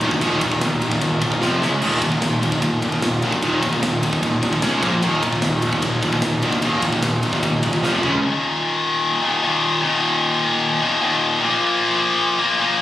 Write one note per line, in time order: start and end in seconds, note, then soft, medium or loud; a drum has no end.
0.00 0.17 D2 medium
0.00 0.10 D#2 medium
0.00 0.10 A#2 medium
0.00 0.11 D#3 loud
0.00 1.45 A#3 loud
0.00 ride medium
0.11 0.21 D#2 medium
0.11 0.21 A#2 medium
0.11 kick medium
0.21 0.37 D#1 medium
0.21 0.41 D#2 medium
0.21 0.41 A#2 medium
0.21 0.41 D#3 medium
0.21 kick loud
0.21 ride loud
0.41 0.57 D#1 loud
0.41 0.51 D#2 medium
0.41 0.51 A#2 medium
0.41 0.61 D#3 medium
0.41 kick medium
0.41 ride medium
0.52 0.61 D#2 medium
0.52 0.61 A#2 medium
0.52 kick medium
0.61 0.77 D#1 loud
0.61 0.80 D#2 medium
0.61 0.80 A#2 medium
0.61 0.80 D#3 loud
0.61 snare loud
0.61 ride loud
0.81 0.97 D#1 medium
0.81 0.91 D#2 medium
0.81 0.91 A#2 medium
0.81 1.01 D#3 medium
0.81 ride medium
0.92 1.01 D#2 medium
0.92 1.01 A#2 medium
0.92 kick medium
1.01 1.17 D#1 medium
1.01 1.20 D#2 medium
1.01 1.20 A#2 medium
1.01 1.20 D#3 loud
1.01 kick loud
1.01 ride loud
1.22 1.37 D#1 medium
1.22 1.32 D#2 medium
1.22 1.32 A#2 medium
1.22 1.41 D#3 medium
1.22 kick medium
1.22 ride medium
1.32 1.42 D#2 medium
1.32 1.42 A#2 medium
1.32 kick medium
1.42 1.57 F1 medium
1.42 1.61 F2 medium
1.42 1.61 C3 loud
1.42 1.62 F3 loud
1.42 snare medium
1.61 1.77 C#2 medium
1.61 1.71 C#3 medium
1.61 1.71 G#3 loud
1.61 1.72 C#4 medium
1.61 snare medium
1.73 1.82 C#3 medium
1.73 1.82 G#3 medium
1.81 1.97 D#1 loud
1.81 2.01 D#2 medium
1.81 2.01 A#2 medium
1.81 2.01 D#3 medium
1.81 crash loud
2.02 2.17 D#1 medium
2.02 2.12 D#2 medium
2.02 2.11 A#2 medium
2.02 2.20 D#3 loud
2.02 kick medium
2.02 ride medium
2.12 2.22 D#2 medium
2.12 2.22 A#2 medium
2.12 kick medium
2.22 2.38 D#1 medium
2.22 2.41 D#2 medium
2.22 2.41 A#2 medium
2.22 2.41 D#3 loud
2.22 snare loud
2.22 ride loud
2.42 2.57 D#1 loud
2.42 2.52 D#2 medium
2.42 2.52 A#2 medium
2.42 2.61 D#3 medium
2.42 ride medium
2.52 2.62 D#2 medium
2.52 2.63 A#2 medium
2.52 kick medium
2.62 2.78 D#1 medium
2.62 2.81 D#2 medium
2.62 2.81 A#2 medium
2.62 2.80 D#3 medium
2.62 kick medium
2.62 ride loud
2.81 2.98 D#1 medium
2.81 2.93 D#2 medium
2.81 2.93 A#2 medium
2.81 3.02 D#3 medium
2.81 kick medium
2.81 ride medium
2.92 3.02 D#2 medium
2.92 3.03 A#2 medium
2.92 kick medium
3.02 3.18 D#1 loud
3.02 3.21 D#2 medium
3.02 3.21 A#2 medium
3.02 3.21 D#3 medium
3.02 snare loud
3.02 ride loud
3.22 3.38 D2 medium
3.22 3.31 D#2 medium
3.22 3.31 A#2 loud
3.22 3.32 D#3 loud
3.22 ride medium
3.32 3.41 D#2 medium
3.32 3.42 A#2 medium
3.32 kick medium
3.42 3.58 D#1 medium
3.42 3.61 D#2 medium
3.42 3.61 A#2 medium
3.42 3.62 D#3 loud
3.42 kick loud
3.42 ride loud
3.62 3.78 D#1 loud
3.62 3.73 D#2 medium
3.62 3.72 A#2 medium
3.62 3.80 D#3 loud
3.62 kick medium
3.62 ride medium
3.73 3.82 D#2 medium
3.73 3.82 A#2 medium
3.73 kick medium
3.82 3.98 D#1 loud
3.82 4.01 D#2 medium
3.82 4.01 A#2 medium
3.82 4.01 D#3 loud
3.82 snare loud
3.82 ride loud
4.02 4.18 D#1 medium
4.02 4.12 D#2 medium
4.02 4.12 A#2 medium
4.02 4.21 D#3 medium
4.02 ride medium
4.13 4.21 D#2 medium
4.13 4.22 A#2 medium
4.13 kick medium
4.22 4.38 D#1 medium
4.22 4.40 D#2 medium
4.22 4.41 A#2 medium
4.22 4.42 D#3 medium
4.22 kick loud
4.22 ride loud
4.42 4.58 D#1 medium
4.42 4.51 D#2 medium
4.42 4.51 A#2 medium
4.42 4.62 D#3 loud
4.42 kick medium
4.42 ride medium
4.52 4.62 D#2 medium
4.52 4.62 A#2 medium
4.52 kick medium
4.62 4.79 C#2 loud
4.62 4.81 C#3 medium
4.62 4.82 G#3 loud
4.62 4.82 C#4 loud
4.62 snare loud
4.62 ride loud
4.82 4.98 A#1 medium
4.82 4.91 A#2 medium
4.82 4.91 F3 loud
4.82 4.92 A#3 loud
4.82 kick loud
4.82 ride medium
4.92 5.01 A#2 medium
4.92 5.02 F3 medium
5.02 5.19 D#1 loud
5.02 5.21 D#2 medium
5.02 5.21 A#2 loud
5.02 5.21 D#3 loud
5.02 ride loud
5.22 5.38 D#1 loud
5.22 5.31 D#2 medium
5.22 5.30 A#2 medium
5.22 5.43 D#3 medium
5.22 kick medium
5.22 ride medium
5.31 5.41 D#2 medium
5.31 5.41 A#2 medium
5.31 kick medium
5.42 5.58 D#1 loud
5.42 5.60 D#2 medium
5.42 5.60 A#2 medium
5.42 5.62 D#3 loud
5.42 snare loud
5.42 ride medium
5.62 5.79 D#1 loud
5.62 5.71 D#2 medium
5.62 5.70 A#2 medium
5.62 5.83 D#3 loud
5.62 ride medium
5.71 5.80 D#2 medium
5.71 5.81 A#2 medium
5.71 kick medium
5.82 5.98 D#1 medium
5.82 6.00 D#2 medium
5.82 6.00 A#2 medium
5.82 6.03 D#3 medium
5.82 kick loud
5.82 ride loud
6.02 6.18 D#1 medium
6.02 6.11 D#2 medium
6.02 6.11 A#2 medium
6.02 6.23 D#3 loud
6.02 kick medium
6.02 ride medium
6.12 6.21 D#2 medium
6.12 6.22 A#2 medium
6.12 kick medium
6.22 6.38 D#1 loud
6.22 6.40 D#2 medium
6.22 6.41 A#2 medium
6.22 6.43 D#3 loud
6.22 snare loud
6.22 ride loud
6.42 6.59 D2 medium
6.42 6.51 D#2 loud
6.42 6.51 A#2 loud
6.42 6.51 D#3 loud
6.42 ride medium
6.53 6.62 D#2 medium
6.53 6.62 A#2 medium
6.53 kick medium
6.62 6.78 D#1 loud
6.62 6.82 D#2 loud
6.62 6.82 A#2 loud
6.62 6.82 D#3 loud
6.62 kick loud
6.62 ride loud
6.82 6.98 D#1 loud
6.82 6.93 D#2 medium
6.82 6.92 A#2 medium
6.82 7.03 D#3 loud
6.82 kick loud
6.82 ride medium
6.93 7.02 D#2 medium
6.93 7.02 A#2 medium
6.93 kick medium
7.03 7.18 D#1 loud
7.03 7.21 D#2 medium
7.03 7.21 A#2 medium
7.03 7.22 D#3 loud
7.03 snare loud
7.03 ride loud
7.22 7.38 D#1 medium
7.22 7.34 D#2 medium
7.22 7.33 A#2 medium
7.22 7.43 D#3 medium
7.22 ride medium
7.33 7.43 D#2 medium
7.33 7.43 A#2 medium
7.33 kick medium
7.43 7.58 D#1 loud
7.43 7.61 D#2 medium
7.43 7.61 A#2 loud
7.43 7.63 D#3 loud
7.43 kick loud
7.43 ride loud
7.63 7.78 D#1 medium
7.63 7.73 D#2 medium
7.63 7.72 A#2 medium
7.63 7.82 D#3 loud
7.63 kick medium
7.63 ride medium
7.73 7.83 D#2 medium
7.73 7.83 A#2 loud
7.73 kick medium
7.82 7.98 F1 loud
7.82 8.02 F2 medium
7.82 8.02 C3 loud
7.82 8.02 F3 loud
7.82 snare medium
8.03 8.18 C#2 loud
8.03 8.11 C#3 loud
8.03 8.12 G#3 loud
8.03 8.12 C#4 loud
8.03 floor tom medium
8.14 8.23 C#3 medium
8.14 8.23 G#3 medium
8.22 9.21 D#2 loud
8.22 9.21 A#2 medium
8.22 9.20 D#3 loud
9.22 9.41 D#2 medium
9.22 9.41 A#2 medium
9.22 9.40 D#3 medium
9.42 9.80 D#2 medium
9.42 9.81 A#2 medium
9.42 9.82 D#3 medium
9.81 10.79 D#2 medium
9.81 10.80 A#2 loud
9.81 10.80 D#3 loud
10.81 11.00 D#2 medium
10.81 11.00 A#2 medium
10.81 10.99 D#3 medium
11.01 11.39 D#2 medium
11.01 11.39 A#2 medium
11.01 11.41 D#3 medium
11.40 12.38 A#2 medium
11.40 12.39 F3 loud
11.40 12.39 A#3 medium
12.39 12.58 A#2 medium
12.39 12.59 F3 medium
12.39 12.61 A#3 medium
12.59 12.82 A#2 medium
12.59 12.82 F3 medium
12.59 12.82 A#3 medium